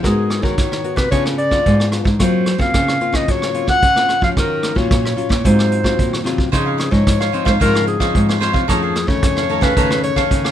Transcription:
0.03 nylon-string guitar G#2 G#3 B3 F#4 A#4, clarinet G#4, kick, cross-stick, closed hi-hat
0.30 cross-stick, closed hi-hat
0.42 nylon-string guitar D#3 B3 F#4 A#4, clarinet C#5, kick
0.58 nylon-string guitar D#3, kick, cross-stick, closed hi-hat
0.72 cross-stick
0.84 nylon-string guitar B3 F#4 A#4, closed hi-hat
0.96 nylon-string guitar C3, clarinet B4, kick, cross-stick
1.11 nylon-string guitar C#3 B3 D4 F4, clarinet C#5, kick, closed hi-hat
1.26 cross-stick
1.38 clarinet D5, closed hi-hat
1.51 nylon-string guitar B3 D4 F4, kick, cross-stick
1.66 nylon-string guitar G#2, kick, closed hi-hat
1.80 cross-stick
1.92 nylon-string guitar B3 D4 F4, cross-stick, closed hi-hat
2.04 nylon-string guitar G#2, kick
2.19 nylon-string guitar F#3 A#3 C4 F4, clarinet C5, kick, cross-stick, closed hi-hat
2.46 cross-stick, closed hi-hat
2.58 nylon-string guitar C#3 A#3 C4 F4, clarinet F5, kick, closed hi-hat
2.74 nylon-string guitar C#3, kick, cross-stick, closed hi-hat
2.88 cross-stick, closed hi-hat
3.01 nylon-string guitar A#3 C4 F4, closed hi-hat
3.12 nylon-string guitar C#3, clarinet D#5, kick, cross-stick
3.28 nylon-string guitar C#3 F#3, clarinet C#5, kick, closed hi-hat
3.42 cross-stick
3.54 nylon-string guitar A#3 C4 F4, closed hi-hat
3.67 clarinet F#5, kick, cross-stick
3.82 nylon-string guitar C#3, kick, closed hi-hat
3.96 nylon-string guitar A#3 C4 F4, cross-stick
4.09 cross-stick, closed hi-hat
4.21 nylon-string guitar F3 F#3 C#4 F4, clarinet F5, kick
4.36 nylon-string guitar D#3, clarinet A#4, kick, cross-stick, closed hi-hat
4.63 cross-stick, closed hi-hat
4.75 nylon-string guitar A#2 F#3 C#4 F4, clarinet C#5, kick
4.90 nylon-string guitar A#2, kick, cross-stick, closed hi-hat
5.05 cross-stick
5.16 nylon-string guitar F#3 C#4 F4, closed hi-hat
5.29 nylon-string guitar A#2, kick, cross-stick
5.44 nylon-string guitar G#2 F#3 C4 F4, clarinet C5, kick, closed hi-hat
5.59 cross-stick
5.71 closed hi-hat
5.83 nylon-string guitar F#3 C4 F4, kick, cross-stick
5.98 nylon-string guitar A#2 D#3, kick, closed hi-hat
6.13 cross-stick
6.24 nylon-string guitar C3 F#3 C4 F4, cross-stick, closed hi-hat
6.38 kick
6.52 nylon-string guitar C#3 F3 C4 D#4, cavaquinho F4 C5 C#5 F5, clarinet G#4, kick, cross-stick, closed hi-hat
6.66 cavaquinho C5 C#5 F5
6.78 muted cavaquinho stroke, cross-stick, closed hi-hat
6.91 nylon-string guitar G#2 F3 D#4, clarinet C#5, kick, closed hi-hat
7.07 nylon-string guitar G#2, kick, cross-stick, closed hi-hat
7.20 cavaquinho C5 C#5 F5, cross-stick, closed hi-hat
7.32 nylon-string guitar F3 C4 D#4, cavaquinho F4 C5 C#5 F5, closed hi-hat
7.45 nylon-string guitar G#2, clarinet C5, cavaquinho C5 C#5 F5, kick, cross-stick
7.60 nylon-string guitar G#2 C#3 F3 C4 D#4, cavaquinho F4 C5 C#5 F5, clarinet A#4, kick, closed hi-hat
7.75 cavaquinho C5 C#5 F5, cross-stick
7.87 clarinet G#4, muted cavaquinho stroke, closed hi-hat
8.00 nylon-string guitar F3 C4 D#4, cavaquinho C5 C#5 F5, kick, cross-stick
8.15 nylon-string guitar G#2, kick, closed hi-hat
8.29 cavaquinho C5 C#5 F5, cross-stick
8.40 nylon-string guitar F3 C4 D#4, cavaquinho F4 C5 C#5 F5, cross-stick, closed hi-hat
8.53 nylon-string guitar C3, cavaquinho C5 C#5 F5, kick
8.68 nylon-string guitar F2 D#3 F3 A3 C#4, cavaquinho D#4 A4 C#5 F5, clarinet G#4, kick, cross-stick, closed hi-hat
8.83 cavaquinho A4 C#5 F5
8.96 muted cavaquinho stroke, cross-stick, closed hi-hat
9.07 nylon-string guitar C#3 D#3 A3 C#4, clarinet C#5, kick
9.23 nylon-string guitar F2 C#3, kick, cross-stick, closed hi-hat
9.37 cavaquinho A4 C#5 F5, cross-stick
9.49 nylon-string guitar D#3 A3 C#4, cavaquinho D#4 A4 C#5 F5, closed hi-hat
9.61 nylon-string guitar C#3, cavaquinho A4 C#5 F5, clarinet B4, kick, cross-stick
9.77 nylon-string guitar F2 C#3 D#3 A3 C#4, cavaquinho D#4 A4 C#5 F5, kick, closed hi-hat
9.91 cavaquinho A4 C#5 F5, cross-stick
10.03 clarinet C#5, muted cavaquinho stroke, closed hi-hat
10.16 nylon-string guitar D#3 A3 C#4, cavaquinho A4 C#5 F5, kick, cross-stick
10.31 nylon-string guitar F2 C#3, kick, closed hi-hat
10.44 cavaquinho A4 C#5 F5, cross-stick

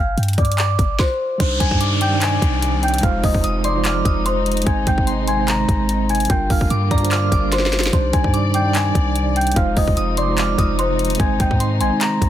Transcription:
Already playing: 808-style bass G1, celesta F5
0.00 celesta F6
0.17 808-style bass G2, closed hi-hat
0.23 closed hi-hat
0.28 closed hi-hat
0.33 closed hi-hat
0.38 808-style bass G2, celesta D5 D6, kick, closed hi-hat
0.45 closed hi-hat
0.52 closed hi-hat
0.58 celesta D5 D6, clap, closed hi-hat
0.79 808-style bass G1, kick, closed hi-hat
0.99 celesta C5 C6, kick, snare
1.38 808-style bass C2, string section C3 D#3 G3 D5, tine electric piano G3 D4 D#4, celesta C5 C6, kick, closed hi-hat, downlifter
1.42 tine electric piano C5
1.60 808-style bass C2, celesta G#5 G#6, kick, closed hi-hat
1.69 808-style bass G2, tine electric piano G3 D4 D#4, kick
1.73 tine electric piano C5
1.80 synth bell D6, closed hi-hat
2.01 celesta G5 G6, synth bell D6, closed hi-hat
2.10 tine electric piano G3 D4 D#4
2.14 tine electric piano D5
2.22 celesta G#5 G#6, clap, closed hi-hat
2.42 808-style bass C2, kick, closed hi-hat
2.62 closed hi-hat
2.83 celesta G5 G6, closed hi-hat
2.88 closed hi-hat
2.94 closed hi-hat
2.98 tine electric piano G#3 D#4, closed hi-hat
3.03 808-style bass F1, string section F3 G#3 D#4, tine electric piano F4 C5, celesta F5 F6, kick, closed hi-hat
3.24 808-style bass F1, celesta D#5 D#6, kick, open hi-hat
3.34 808-style bass F1, kick
3.44 808-style bass F1, synth bell D#6, closed hi-hat
3.64 celesta D5 D6, synth bell C6, closed hi-hat
3.73 tine electric piano G#3 D#4 F4
3.78 tine electric piano C5
3.85 celesta D5 D6, synth bell F6, clap, closed hi-hat
4.05 808-style bass F1, synth bell D#6, kick, closed hi-hat
4.26 celesta C5 C6, closed hi-hat
4.46 closed hi-hat
4.52 closed hi-hat
4.57 closed hi-hat
4.62 tine electric piano G#3 C4, closed hi-hat
4.66 808-style bass G#1, string section C3 D#3, tine electric piano D#4 C5, celesta G#5 G#6, kick, closed hi-hat
4.87 808-style bass G#1, celesta G5 G6, kick, closed hi-hat
4.96 tine electric piano G#3 C4 D#4, kick
5.00 tine electric piano C5
5.07 synth bell C6, closed hi-hat
5.27 celesta G#5 G#6, synth bell C6, closed hi-hat
5.36 tine electric piano G#3 C4 D#4
5.41 tine electric piano C5
5.48 celesta A#5 A#6, clap, closed hi-hat
5.69 808-style bass G#1, kick, closed hi-hat
5.89 closed hi-hat
6.09 celesta G#5 G#6, closed hi-hat
6.15 closed hi-hat
6.20 closed hi-hat
6.25 tine electric piano G3, closed hi-hat
6.29 808-style bass G1, string section D3 G3 A#3 F4, tine electric piano D4 F4 A#4, celesta G5 G6, kick, closed hi-hat
6.50 808-style bass G1, celesta F5 F6, kick, open hi-hat
6.61 kick
6.70 808-style bass G2, synth bell D6, closed hi-hat
6.91 808-style bass G2, celesta D5 D6, synth bell A#5, kick, closed hi-hat
6.98 tine electric piano G3 D4, closed hi-hat
7.02 tine electric piano F4 C5, closed hi-hat
7.11 celesta D5 D6, synth bell F6, clap, closed hi-hat
7.32 808-style bass G1, synth bell D6, kick, closed hi-hat
7.52 celesta C5 C6, snare, closed hi-hat
7.59 snare
7.66 snare
7.73 snare, closed hi-hat
7.79 snare
7.83 snare, closed hi-hat
7.91 808-style bass C2, string section C3 D#3 D5, tine electric piano G3 D4 D#4, celesta C5 C6, kick, closed hi-hat
7.95 tine electric piano C5
8.13 808-style bass C2, celesta G#5 G#6, kick, closed hi-hat
8.22 808-style bass G2, tine electric piano G3 D4 D#4, kick
8.26 tine electric piano C5
8.34 synth bell D6, closed hi-hat
8.54 celesta G5 G6, synth bell D6, closed hi-hat
8.63 tine electric piano G3 D4 D#4
8.67 tine electric piano D5
8.75 celesta G#5 G#6, clap, closed hi-hat
8.95 808-style bass C2, kick, closed hi-hat
9.16 closed hi-hat
9.36 celesta G5 G6, closed hi-hat
9.41 closed hi-hat
9.47 closed hi-hat
9.52 tine electric piano G#3, closed hi-hat
9.56 808-style bass F1, string section F3 G#3 D#4, tine electric piano D#4 F4 C5, celesta F5 F6, kick, closed hi-hat
9.77 808-style bass F1, celesta D#5 D#6, kick, open hi-hat
9.88 808-style bass F1, kick
9.97 808-style bass F1, synth bell D#6, closed hi-hat
10.17 celesta D5 D6, synth bell C6, closed hi-hat
10.26 tine electric piano G#3 D#4 F4
10.31 tine electric piano C5
10.38 celesta D5 D6, synth bell F6, clap, closed hi-hat
10.58 808-style bass F1, synth bell D#6, kick, closed hi-hat
10.79 celesta C5 C6, closed hi-hat
10.99 closed hi-hat
11.05 closed hi-hat
11.10 closed hi-hat
11.15 tine electric piano G#3 C4, closed hi-hat
11.20 808-style bass G#1, string section D#3, tine electric piano D#4 C5, celesta G#5 G#6, kick, closed hi-hat
11.40 808-style bass G#1, celesta G5 G6, kick, closed hi-hat
11.49 808-style bass G#2, tine electric piano G#3 C4 D#4, kick
11.53 tine electric piano C5
11.60 synth bell C6, closed hi-hat
11.80 808-style bass A#1, celesta G#5 G#6, synth bell C6, closed hi-hat
11.89 tine electric piano G#3 C4 D#4
11.94 tine electric piano C5
12.01 celesta A#5 A#6, clap, closed hi-hat
12.22 808-style bass G#1, kick, closed hi-hat

